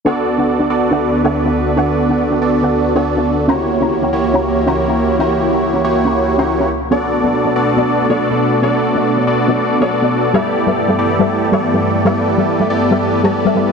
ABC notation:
X:1
M:4/4
L:1/16
Q:"Swing 16ths" 1/4=140
K:D
V:1 name="Synth pluck"
[DABef] z2 [DABef] z [DABef] z2 [DABef] z2 [DABef]2 [DABef] z2 | [DABef] z2 [DABef] z [DABef] z2 [DABef] z2 [DABef]2 [DABef] z2 | [Ccefg^a] z2 [Ccefga] z [Ccefga] z2 [Ccefga] z2 [Ccefga]2 [Ccefga] z2 | [Ccefg^a] z2 [Ccefga] z [Ccefga] z2 [Ccefga] z2 [Ccefga]2 [Ccefga] z2 |
[B,FAcd] z2 [B,FAcd] z [B,FAcd] z2 [B,FAcd] z2 [B,FAcd]2 [B,FAcd] z2 | [B,FAcd] z2 [B,FAcd] z [B,FAcd] z2 [B,FAcd] z2 [B,FAcd]2 [B,FAcd] z2 | [G,GABe] z2 [G,GABe] z [G,GABe] z2 [G,GABe] z2 [G,GABe]2 [G,GABe] z2 | [G,GABe] z2 [G,GABe] z [G,GABe] z2 [G,GABe] z2 [G,GABa] z [G,GABe] [G,GABe] z |]
V:2 name="Analog polysynth"
[B,DFAd]6 [B,DFAd]4- [B,DFAd] [B,DFAd]4- [B,DFAd] | [B,DFAd]6 [B,DFAd]4- [B,DFAd] [B,DFAd]4- [B,DFAd] | [^A,EFGc]6 [A,EFGc]4- [A,EFGc] [A,EFGc]4- [A,EFGc] | [^A,EFGc]6 [A,EFGc]4- [A,EFGc] [A,EFGc]3 z2 |
[B,DFAd]6 [B,DFAd]4- [B,DFAd] [B,DFAd]4- [B,DFAd] | [B,DFAd]6 [B,DFAd]4- [B,DFAd] [B,DFAd]4- [B,DFAd] | [B,EGAd]6 [B,EGAd]4- [B,EGAd] [B,EGAd]4- [B,EGAd] | [B,EGAd]6 [B,EGAd]4- [B,EGAd] [B,EGAd]4- [B,EGAd] |]
V:3 name="Analog synth pad" clef=bass
[D,,D,B,]16- | [D,,D,B,]16 | [C,,E,^A,]16- | [C,,E,^A,]12- [C,,E,A,]2 [B,,=A,D]2- |
[B,,A,D]16- | [B,,A,D]16 | [G,,E,A,B,]16- | [G,,E,A,B,]16 |]